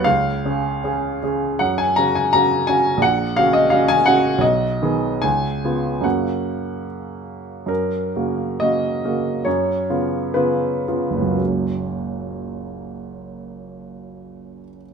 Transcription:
upright piano
0.04 C#2 F5
0.45 C#3 C#4 G#4
0.84 C#3 C#4 G#4
1.23 C#3 C#4 G#4
1.59 F#2 F#5
1.78 G#5
1.96 C#3 C#4 F#4 A#5
2.15 G#5
2.33 C#3 C#4 F#4 A#5
2.67 C#3 C#4 F#4 G#5
2.97 A#1
3.02 F#5
3.37 C#3 C#4 F#4 F5
3.53 D#5
3.70 C#3 C#4 F#4 F5
3.88 G#5
4.06 C#3 C#4 F#4 F#5
4.38 B1 D#5
4.82 D#3 B3 G#4
5.22 C#2 G#5
5.64 C#3 B3 F4
6.01 F#2 C#3 A#3 F#4 F#5
7.66 F#2 A#4
8.16 C#3 A#3 F#4
8.60 C#3 A#3 F#4 D#5
9.05 C#3 A#3 F#4
9.45 F#2 C#5
9.90 C#3 B3 F4
10.34 C#3 B3 F4 B4
10.88 C#3 B3 F4
11.11 F#1
11.16 C#2
11.22 F#3
11.28 A#3
11.33 C#4 F#4

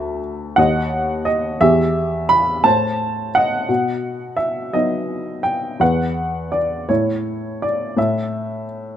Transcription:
upright piano
Already playing: D2 A4 E5
0.56 D#2 D#5 F#5
1.25 D#5
1.61 E2 G4 E5
2.29 B5
2.64 A2 C5 A5
3.35 D#5 F#5
3.69 B2
4.37 E5
4.73 F#3 B3 D#4 D#5
5.43 G5
5.80 E2 B4 F#5
6.52 D5
6.89 A2 E4 C#5
7.62 D5
7.97 A2 E5

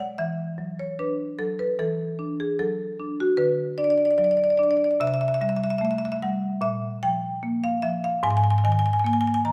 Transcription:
marimba
Already playing: B2 G#3
0.00 F#5
0.18 E3 E5
0.58 F#3
0.79 C#5
0.99 D4 B4
1.39 F#3 A4
1.59 B4
1.79 E3 A4
2.19 D4
2.40 G#4
2.59 F#3 A4
3.00 D4
3.20 F#4
3.37 D3 B4
3.78 D4 D5
3.84 D5
3.90 D5
3.98 D5
4.05 D5
4.11 D5
4.18 F#3 D5
4.24 D5
4.31 D5
4.37 D5
4.44 D5
4.50 D5
4.57 D4 D5
4.63 D5
4.71 D5
4.77 D5
4.84 D5
4.91 D5
5.00 C3 E5
5.07 E5
5.14 E5
5.21 E5
5.28 E5
5.34 E5
5.41 G3 E5
5.49 E5
5.56 E5
5.64 E5
5.70 E5
5.78 A3 E5
5.85 E5
5.91 E5
5.98 E5
6.05 E5
6.12 E5
6.22 G3 F#5
6.61 A#2 E5
7.03 F3 G5
7.43 A#3
7.64 F5
7.82 F3 E5
8.04 F5
8.23 G#2 G#5
8.30 G#5
8.37 G#5
8.44 G#5
8.50 G#5
8.58 G#5
8.64 D#3 G#5
8.72 G#5
8.79 G#5
8.86 G#5
8.93 G#5
8.99 G#5
9.04 A#3 G#5
9.13 G#5
9.21 G#5
9.27 G#5
9.34 G#5
9.45 D#3 A#5

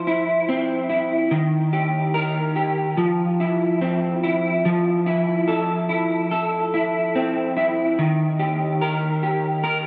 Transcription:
clean electric guitar
Already playing: F3 C5
0.07 E4
0.49 C4
0.90 E4
1.31 D#3
1.73 G4
2.14 A#4
2.56 G4
2.97 F3
3.40 E4
3.81 C4
4.23 E4
4.65 F3
5.06 E4
5.48 A4
5.89 E4
6.31 A4
6.74 E4
7.15 C4
7.57 E4
7.99 D#3
8.39 G4
8.81 A#4
9.23 G4
9.64 A#4

